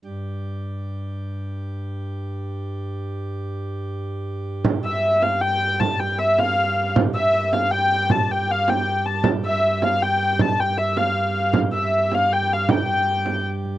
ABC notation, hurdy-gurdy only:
X:1
M:6/8
L:1/8
Q:3/8=104
K:F
V:1 name="Hurdy-gurdy"
z6 | z6 | z6 | z6 |
z e2 f g2 | a g e f3 | z e2 f g2 | a g f g2 a |
z e2 f g2 | a g e f3 | z e2 f g f | g4 z2 |]